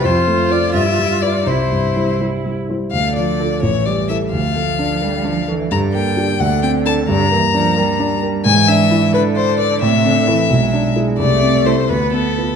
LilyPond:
<<
  \new Staff \with { instrumentName = "Violin" } { \time 6/8 \key c \major \tempo 4. = 87 c''4 d''8 e''4 d''8 | c''4. r4. | \key d \minor f''8 d''4 cis''8 d''8 e''8 | f''2~ f''8 r8 |
bes''8 g''4 fis''8 g''8 a''8 | bes''2~ bes''8 r8 | \key a \minor gis''8 e''4 b'8 c''8 d''8 | e''2~ e''8 r8 |
d''4 c''8 b'8 a'4 | }
  \new Staff \with { instrumentName = "Grand piano" } { \time 6/8 \key c \major f,8 a8 <f' c''>8 g,8 g8 <f' b'>8 | c,8 g,8 <g e' c''>8 <g e' c''>8 g8 <g e' c''>8 | \key d \minor d,8 f8 <f' a'>8 a,,8 g8 <e' a'>8 | d,8 a8 d'8 a'8 d'8 a'8 |
g,8 bes8 <d' g'>8 d,8 c'8 <d' a'>8 | g,8 bes8 d'8 bes'8 d'8 bes'8 | \key a \minor gis,8 d'8 e'8 b'8 d''8 b'8 | a,8 c'8 <e' a'>8 b,,8 d'8 <e' gis'>8 |
c,8 c'8 <e' a'>8 d,8 b8 <f' b'>8 | }
  \new Staff \with { instrumentName = "Cello" } { \clef bass \time 6/8 \key c \major f'2. | e'2~ e'16 r8. | \key d \minor d4. e4. | f4. g8 f8 e8 |
d4. d4. | d8 e8 f8 g4. | \key a \minor e4. d4. | c8 d8 e8 gis4. |
a4. b4. | }
>>